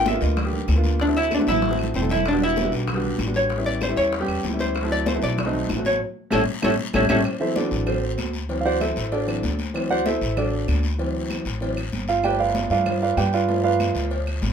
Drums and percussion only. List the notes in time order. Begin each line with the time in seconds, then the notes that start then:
0.05 high bongo, high conga, short guiro
0.21 high bongo, short guiro
0.37 high bongo, high conga, low conga, long guiro, claves
0.53 high bongo, high conga, low conga
0.68 high bongo, low bongo, high conga, short guiro, claves
0.84 high bongo, high conga, short guiro
1.00 high bongo, high conga, long guiro
1.16 high conga
1.31 high bongo, high conga, short guiro, claves
1.41 high conga
1.47 high bongo, short guiro
1.52 low conga
1.62 high bongo, low conga, long guiro
1.73 low conga
1.79 high bongo, claves
1.83 low conga
1.94 high bongo, low bongo, short guiro
2.05 low conga
2.10 high bongo, short guiro
2.15 low conga
2.25 high bongo, high conga, long guiro, claves
2.42 high conga
2.56 high bongo, high conga, short guiro
2.72 high bongo, short guiro
2.88 high bongo, high conga, low conga, long guiro, claves
3.03 high bongo, high conga, low conga
3.18 high bongo, low bongo, high conga, short guiro, claves
3.34 high bongo, short guiro
3.50 high bongo, high conga, long guiro
3.66 high conga
3.81 high bongo, high conga, short guiro, claves
3.97 high bongo, short guiro
4.12 high bongo, high conga, long guiro
4.28 high bongo, high conga, claves
4.43 high bongo, low bongo, high conga, short guiro
4.59 high bongo, high conga, short guiro
4.75 high bongo, high conga, long guiro, claves
4.91 high conga
5.06 high bongo, high conga, short guiro
5.22 high bongo, short guiro
5.38 high bongo, high conga, low conga, long guiro, claves
5.54 high bongo, high conga, low conga
5.69 high bongo, low bongo, high conga, short guiro, claves
5.85 high bongo, high conga, short guiro
6.32 low bongo, high conga, long guiro, claves
6.62 low bongo, high conga, long guiro, claves
6.93 low bongo, high conga, long guiro, claves
7.09 low bongo, high conga, long guiro, claves
7.24 cowbell, high conga, long guiro, claves
7.41 high conga
7.56 cowbell, high conga, short guiro
7.71 short guiro
7.87 cowbell, high conga, low conga, long guiro, claves
8.18 cowbell, high conga, short guiro, claves
8.33 short guiro
8.49 cowbell, high conga, long guiro
8.66 high conga
8.81 cowbell, high conga, short guiro, claves
8.96 cowbell, high conga, short guiro
9.12 cowbell, high conga, long guiro
9.28 cowbell, high conga, claves
9.43 cowbell, high conga, short guiro
9.59 cowbell, short guiro
9.74 cowbell, high conga, long guiro, claves
9.91 high conga
10.06 cowbell, high conga, short guiro
10.21 short guiro
10.37 cowbell, high conga, low conga, long guiro, claves
10.53 high conga
10.68 cowbell, high conga, short guiro, claves
10.83 short guiro
10.99 cowbell, high conga, long guiro
11.15 high conga
11.30 cowbell, high conga, short guiro, claves
11.45 cowbell, high conga, short guiro
11.61 cowbell, high conga, long guiro
11.77 cowbell, high conga, claves
11.92 cowbell, high conga, short guiro
12.08 cowbell, short guiro
12.23 cowbell, high conga, long guiro, claves
12.40 high conga
12.55 cowbell, high conga, short guiro
12.70 short guiro
12.86 cowbell, high conga, low conga, long guiro, claves
13.02 high conga
13.17 cowbell, high conga, short guiro, claves
13.33 short guiro
13.48 cowbell, high conga, long guiro
13.64 high conga
13.80 cowbell, high conga, short guiro, claves
13.95 cowbell, high conga, short guiro
14.11 cowbell, high conga, long guiro
14.27 cowbell, high conga, claves
14.42 cowbell, high conga, short guiro